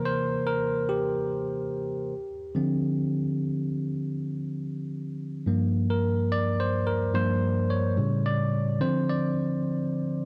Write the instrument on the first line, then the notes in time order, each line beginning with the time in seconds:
tine electric piano
Already playing: C3 E3 A#3 A#4 C5
0.05 C5
0.47 A#4
0.89 G4
2.55 D3 F3 C4
5.46 G2 F3 A#3
5.90 A#4
6.32 D5
6.60 C5
6.87 A#4
7.13 G2 F3 A#3 C5
7.70 C#5
7.97 A2 C#3 G3
8.26 D5
8.80 D3 F3 C4 C5
9.09 D5